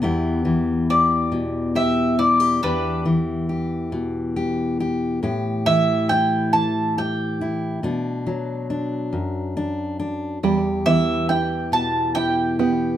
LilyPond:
<<
  \new Staff \with { instrumentName = "Mandolin" } { \time 6/8 \key e \minor \tempo 4. = 46 r4 d''4 e''8 d''8 | <d' b'>8 r2 r8 | r8 e''8 g''8 a''8 g''4 | r2. |
r8 e''8 g''8 a''8 g''4 | }
  \new Staff \with { instrumentName = "Steel-string acoustic guitar" } { \time 6/8 \key e \minor << { <e b g'>4 g'4 g'8 e'16 g'16 | g'4 g'4 g'8 g'8 | g'4 e'4 g'8 e'8 | d'4 d'4 d'8 d'8 |
g'4 g'4 g'8 g'8 | } \\ { e,8 e4 b,4. | e,8 e4 b,4. | a,8 e4 e4. | b,8 fis4 fis,4. |
e,8 e4 b,4. | } >> }
  \new Staff \with { instrumentName = "Five-string banjo" } { \time 6/8 \key e \minor r2. | r2. | r2. | r2. |
g8 b8 e'4 e'8 b8 | }
>>